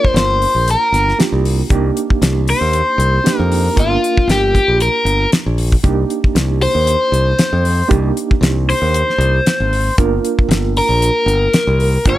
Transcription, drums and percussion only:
0.05 kick medium
0.16 snare loud
0.16 closed hi-hat medium
0.42 open hi-hat medium
0.68 closed hi-hat medium
0.94 snare soft
0.94 closed hi-hat medium
1.09 snare soft
1.20 snare loud
1.20 closed hi-hat medium
1.45 open hi-hat medium
1.70 kick loud
1.70 closed hi-hat medium
1.97 closed hi-hat medium
2.10 kick medium
2.22 snare loud
2.22 closed hi-hat medium
2.48 open hi-hat medium
2.73 closed hi-hat medium
3.00 closed hi-hat medium
3.26 snare loud
3.26 closed hi-hat medium
3.52 open hi-hat medium
3.77 kick loud
3.77 closed hi-hat medium
4.04 closed hi-hat medium
4.17 kick medium
4.29 snare loud
4.29 closed hi-hat medium
4.55 kick medium
4.55 closed hi-hat medium
4.80 closed hi-hat medium
5.06 closed hi-hat medium
5.32 snare loud
5.32 closed hi-hat medium
5.58 open hi-hat medium
5.72 kick medium
5.84 kick loud
5.84 closed hi-hat medium
6.10 closed hi-hat medium
6.24 kick medium
6.36 snare loud
6.36 closed hi-hat medium
6.61 open hi-hat medium
6.87 closed hi-hat medium
7.14 closed hi-hat medium
7.39 snare loud
7.39 closed hi-hat medium
7.65 open hi-hat medium
7.91 kick loud
7.91 closed hi-hat medium
8.17 closed hi-hat medium
8.31 kick medium
8.43 snare loud
8.43 closed hi-hat medium
8.69 open hi-hat medium
8.94 closed hi-hat medium
9.10 snare soft
9.21 closed hi-hat medium
9.46 snare loud
9.46 closed hi-hat medium
9.73 open hi-hat medium
9.98 kick loud
9.98 closed hi-hat medium
10.25 closed hi-hat medium
10.39 kick medium
10.51 snare loud
10.51 closed hi-hat medium
10.77 open hi-hat medium
11.02 closed hi-hat medium
11.28 closed hi-hat medium
11.54 snare loud
11.54 closed hi-hat medium
11.80 open hi-hat medium
12.05 kick loud
12.05 closed hi-hat medium

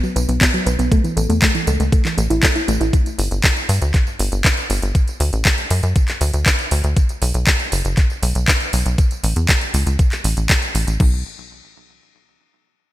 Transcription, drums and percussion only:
0.04 tambourine soft
0.16 closed hi-hat medium
0.16 tambourine medium
0.29 closed hi-hat medium
0.29 tambourine soft
0.41 kick loud
0.41 clap loud
0.41 closed hi-hat medium
0.41 tambourine soft
0.54 closed hi-hat soft
0.54 tambourine soft
0.67 closed hi-hat medium
0.67 tambourine medium
0.79 closed hi-hat medium
0.79 tambourine soft
0.92 kick loud
0.92 closed hi-hat medium
0.92 tambourine soft
1.04 closed hi-hat soft
1.04 tambourine soft
1.17 closed hi-hat medium
1.17 tambourine medium
1.30 closed hi-hat soft
1.30 tambourine soft
1.42 kick loud
1.42 clap loud
1.42 closed hi-hat medium
1.42 tambourine soft
1.55 closed hi-hat soft
1.55 tambourine soft
1.67 closed hi-hat medium
1.67 tambourine medium
1.80 closed hi-hat medium
1.80 tambourine soft
1.92 kick loud
1.92 closed hi-hat medium
1.92 tambourine soft
2.05 clap soft
2.05 closed hi-hat soft
2.05 tambourine soft
2.18 closed hi-hat medium
2.18 tambourine medium
2.30 closed hi-hat medium
2.30 tambourine soft
2.43 kick loud
2.43 clap loud
2.43 closed hi-hat medium
2.43 tambourine soft
2.56 closed hi-hat soft
2.56 tambourine soft
2.68 closed hi-hat medium
2.68 tambourine medium
2.81 closed hi-hat soft
2.81 tambourine soft
2.93 kick loud
2.93 closed hi-hat medium
2.93 tambourine soft
3.06 closed hi-hat soft
3.06 tambourine soft
3.19 open hi-hat loud
3.19 tambourine medium
3.31 closed hi-hat soft
3.31 tambourine soft
3.44 kick loud
3.44 clap loud
3.44 closed hi-hat medium
3.44 tambourine soft
3.56 closed hi-hat soft
3.56 tambourine soft
3.69 open hi-hat loud
3.69 tambourine medium
3.82 closed hi-hat medium
3.82 tambourine soft
3.94 kick loud
3.94 clap soft
3.94 closed hi-hat medium
3.94 tambourine soft
4.07 tambourine soft
4.19 open hi-hat loud
4.19 tambourine medium
4.32 closed hi-hat soft
4.32 tambourine soft
4.45 kick loud
4.45 clap loud
4.45 closed hi-hat medium
4.45 tambourine soft
4.57 closed hi-hat soft
4.57 tambourine soft
4.70 open hi-hat loud
4.70 tambourine medium
4.82 closed hi-hat soft
4.82 tambourine soft
4.95 kick loud
4.95 closed hi-hat medium
4.95 tambourine soft
5.08 closed hi-hat soft
5.08 tambourine soft
5.20 open hi-hat loud
5.20 tambourine medium
5.33 closed hi-hat soft
5.33 tambourine soft
5.45 kick loud
5.45 clap loud
5.45 closed hi-hat medium
5.45 tambourine soft
5.58 closed hi-hat soft
5.58 tambourine soft
5.70 open hi-hat loud
5.70 tambourine medium
5.83 closed hi-hat soft
5.83 tambourine soft
5.96 kick loud
5.96 closed hi-hat medium
5.96 tambourine soft
6.08 clap soft
6.08 closed hi-hat soft
6.08 tambourine soft
6.21 open hi-hat loud
6.21 tambourine medium
6.33 closed hi-hat medium
6.33 tambourine soft
6.46 kick loud
6.46 clap loud
6.46 closed hi-hat medium
6.46 tambourine soft
6.59 closed hi-hat soft
6.59 tambourine soft
6.71 open hi-hat loud
6.71 tambourine medium
6.84 closed hi-hat soft
6.84 tambourine soft
6.97 kick loud
6.97 closed hi-hat medium
6.97 tambourine soft
7.09 closed hi-hat soft
7.09 tambourine soft
7.22 open hi-hat loud
7.22 tambourine medium
7.34 closed hi-hat soft
7.34 tambourine soft
7.47 kick loud
7.47 clap loud
7.47 closed hi-hat medium
7.47 tambourine soft
7.59 closed hi-hat soft
7.59 tambourine soft
7.72 open hi-hat loud
7.72 tambourine medium
7.85 closed hi-hat medium
7.85 tambourine soft
7.97 kick loud
7.97 clap soft
7.97 closed hi-hat medium
7.97 tambourine soft
8.10 tambourine soft
8.23 open hi-hat loud
8.23 tambourine medium
8.35 closed hi-hat medium
8.35 tambourine soft
8.48 kick loud
8.48 clap loud
8.48 closed hi-hat medium
8.48 tambourine soft
8.60 closed hi-hat soft
8.60 tambourine soft
8.73 open hi-hat loud
8.73 tambourine medium
8.86 closed hi-hat medium
8.86 tambourine soft
8.98 kick loud
8.98 closed hi-hat medium
8.98 tambourine soft
9.11 closed hi-hat soft
9.11 tambourine soft
9.24 open hi-hat loud
9.24 tambourine medium
9.36 closed hi-hat medium
9.36 tambourine soft
9.49 kick loud
9.49 clap loud
9.49 closed hi-hat medium
9.49 tambourine soft
9.61 closed hi-hat soft
9.61 tambourine soft
9.74 open hi-hat loud
9.74 tambourine medium
9.87 closed hi-hat medium
9.87 tambourine soft
9.99 kick loud
9.99 closed hi-hat medium
9.99 tambourine soft
10.12 clap soft
10.12 closed hi-hat soft
10.12 tambourine soft
10.24 open hi-hat loud
10.24 tambourine medium
10.37 closed hi-hat medium
10.37 tambourine soft
10.50 kick loud
10.50 clap loud
10.50 closed hi-hat medium
10.50 tambourine soft
10.62 closed hi-hat soft
10.62 tambourine soft
10.75 open hi-hat loud
10.75 tambourine medium
10.88 closed hi-hat medium
10.88 tambourine soft
11.00 kick loud
11.00 crash medium

